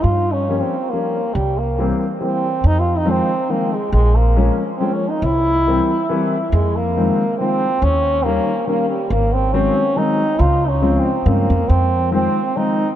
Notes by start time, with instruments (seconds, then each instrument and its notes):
0.03 upright bass G2, french horn F4
0.32 french horn C#4
0.49 upright piano F3 G3 A#3 C#4
0.60 french horn C4
0.90 upright piano F3 G3 A#3 C#4, french horn A#3
1.34 upright bass C2, french horn G3
1.58 french horn A#3
1.78 upright piano E3 G3 A#3 C4
2.20 upright piano E3 G3 A#3 C4, french horn C4
2.64 upright bass F2, french horn D#4
2.79 french horn F4
2.97 french horn D#4
3.05 upright piano D#3 F3 G#3 C4
3.10 french horn C4
3.49 upright piano D#3 F3 G#3 C4, french horn A#3
3.73 french horn G#3
3.92 upright bass A#1, french horn G#3
4.16 french horn A#3
4.36 upright piano F3 G#3 A#3 C#4
4.78 upright piano F3 G#3 A#3 C#4, french horn C4
4.93 french horn C#4
5.09 french horn D#4
5.22 upright bass C2, french horn E4
5.67 upright piano E3 G3 A#3 C4
6.09 upright piano E3 G3 A#3 C4
6.52 upright bass F2, french horn G#3
6.76 french horn A#3
6.97 upright piano D#3 F3 G#3 C4
7.38 upright piano D#3 F3 G#3 C4, french horn C4
7.82 upright bass D#2, french horn C#4
8.24 upright piano D#3 G3 A#3 C#4, french horn A#3
8.67 upright piano D#3 G3 A#3 C#4, french horn A#3
8.90 french horn G3
9.10 upright bass G#1, french horn A#3
9.33 french horn C4
9.53 upright piano D#3 F#3 G#3 C4, french horn C#4
9.96 upright piano D#3 F#3 G#3 C4, french horn D#4
10.39 upright bass C#2, french horn F4
10.68 french horn C#4
10.82 upright piano C#3 F3 G#3 C4
10.99 french horn C4
11.26 upright bass G2, upright piano C#3 F3 G#3 C4, french horn A#3
11.50 upright bass F2
11.69 upright bass F2, french horn C4
12.11 upright piano D#3 F3 G#3 C4, french horn C4
12.56 upright piano D#3 F3 G#3 C4, french horn D#4